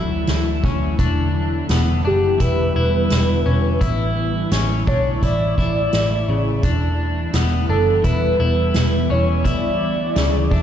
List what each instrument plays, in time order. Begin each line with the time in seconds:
Already playing: picked electric bass D2, ambient pad D3 E3 F#3 A3 E4, clean electric guitar E4
0.27 picked electric bass D2, snare, closed hi-hat
0.64 picked electric bass D2, clean electric guitar C#4, kick
0.99 picked electric bass E1, ambient pad G3 B3, clean electric guitar D4, kick, closed hi-hat
1.69 picked electric bass E1, clean electric guitar B3, snare, closed hi-hat
2.05 picked electric bass F#1, clean electric guitar D4, soft synth lead G4
2.40 picked electric bass E1, clean electric guitar E4, soft synth lead B4, kick, closed hi-hat
2.76 picked electric bass E1, clean electric guitar E4
3.10 picked electric bass E1, snare, closed hi-hat
3.46 picked electric bass E1, clean electric guitar C#4
3.81 picked electric bass A1, ambient pad E3 A3 E4, clean electric guitar E4, kick, closed hi-hat
4.51 picked electric bass A1, clean electric guitar C#4, snare, closed hi-hat
4.87 picked electric bass B1, clean electric guitar D4, soft synth lead C#5, kick
5.23 picked electric bass A1, clean electric guitar E4, soft synth lead D5, kick, closed hi-hat
5.58 picked electric bass A1, clean electric guitar E4, kick
5.93 picked electric bass A1, snare, closed hi-hat
6.28 picked electric bass A1, clean electric guitar C#3
6.63 picked electric bass E1, ambient pad D3 E3 G3 B3 E4, clean electric guitar D4, kick, closed hi-hat
7.33 picked electric bass E1, clean electric guitar B3, snare, closed hi-hat
7.69 picked electric bass F#1, clean electric guitar D4, soft synth lead A4
8.04 picked electric bass E1, clean electric guitar E4, soft synth lead B4, kick, closed hi-hat
8.40 picked electric bass E1, clean electric guitar E4
8.74 picked electric bass E1, snare, closed hi-hat
9.10 picked electric bass E1, clean electric guitar C#4, soft synth lead C#5
9.45 picked electric bass D2, clean electric guitar E4, soft synth lead D5, kick, closed hi-hat
10.16 picked electric bass D2, clean electric guitar C#3, snare, closed hi-hat
10.51 picked electric bass E2, clean electric guitar D4, soft synth lead E5, kick